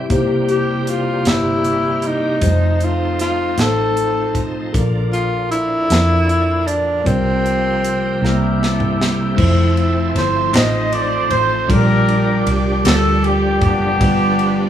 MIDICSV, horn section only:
0, 0, Header, 1, 2, 480
1, 0, Start_track
1, 0, Key_signature, -1, "major"
1, 0, Tempo, 772201
1, 67, Time_signature, 6, 3, 24, 8
1, 9134, End_track
2, 0, Start_track
2, 0, Title_t, "Horn section"
2, 0, Program_c, 0, 61
2, 5119, Note_on_c, 0, 70, 60
2, 5121, Note_on_c, 0, 67, 50
2, 5122, Note_on_c, 0, 64, 49
2, 5338, Note_off_c, 0, 70, 0
2, 5359, Note_on_c, 0, 69, 59
2, 5594, Note_off_c, 0, 69, 0
2, 5603, Note_off_c, 0, 64, 0
2, 5604, Note_on_c, 0, 69, 68
2, 5610, Note_on_c, 0, 64, 57
2, 5613, Note_on_c, 0, 60, 59
2, 5810, Note_off_c, 0, 67, 0
2, 6292, Note_off_c, 0, 69, 0
2, 6295, Note_off_c, 0, 64, 0
2, 6297, Note_off_c, 0, 60, 0
2, 6317, Note_on_c, 0, 72, 84
2, 6553, Note_off_c, 0, 72, 0
2, 6553, Note_on_c, 0, 75, 82
2, 6562, Note_on_c, 0, 72, 57
2, 6791, Note_off_c, 0, 75, 0
2, 6792, Note_on_c, 0, 74, 80
2, 7022, Note_off_c, 0, 72, 0
2, 7029, Note_on_c, 0, 72, 89
2, 7031, Note_off_c, 0, 74, 0
2, 7253, Note_off_c, 0, 72, 0
2, 7268, Note_on_c, 0, 70, 95
2, 7276, Note_on_c, 0, 67, 66
2, 7278, Note_on_c, 0, 62, 70
2, 7795, Note_off_c, 0, 70, 0
2, 7968, Note_off_c, 0, 67, 0
2, 7969, Note_off_c, 0, 62, 0
2, 7988, Note_on_c, 0, 69, 76
2, 8212, Note_off_c, 0, 69, 0
2, 8233, Note_on_c, 0, 67, 73
2, 8464, Note_off_c, 0, 67, 0
2, 8472, Note_on_c, 0, 67, 92
2, 8484, Note_on_c, 0, 59, 66
2, 8486, Note_on_c, 0, 62, 75
2, 9134, Note_off_c, 0, 59, 0
2, 9134, Note_off_c, 0, 62, 0
2, 9134, Note_off_c, 0, 67, 0
2, 9134, End_track
0, 0, End_of_file